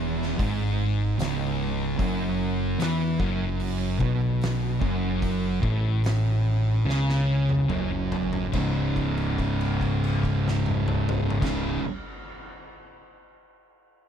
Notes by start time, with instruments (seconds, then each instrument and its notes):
Already playing: fingered electric bass E1, distorted electric guitar E2
0.22 snare
0.39 fingered electric bass G#1, distorted electric guitar G#2, kick, open hi-hat
1.18 fingered electric bass C#1, distorted electric guitar C#2, snare, open hi-hat
1.99 fingered electric bass F#1, distorted electric guitar F#2, kick, open hi-hat
2.78 fingered electric bass E2, distorted electric guitar E3, snare, open hi-hat
3.19 fingered electric bass F#1, distorted electric guitar F#2, kick
3.60 open hi-hat
3.98 fingered electric bass B1, distorted electric guitar B2, kick
4.41 snare, open hi-hat
4.80 fingered electric bass F#1, distorted electric guitar F#2, kick
5.22 kick, open hi-hat
5.62 fingered electric bass A1, distorted electric guitar A2, kick
6.04 snare, open hi-hat
6.85 fingered electric bass C#2, distorted electric guitar C#3
6.89 snare
7.09 snare
7.49 high tom
7.69 fingered electric bass F#1, distorted electric guitar F#2, mid tom
8.12 floor tom
8.33 floor tom
8.52 fingered electric bass C#1, distorted electric guitar C#2 G#2 C#3, kick, crash
8.96 kick, crash
9.17 crash
9.38 kick, crash
9.61 crash
9.81 kick, crash
10.04 crash
10.23 kick, crash
10.48 snare
10.66 high tom
10.88 mid tom
11.09 mid tom
11.30 floor tom
11.40 fingered electric bass C#1, distorted electric guitar C#2 G#2, kick, crash
11.44 distorted electric guitar C#3, snare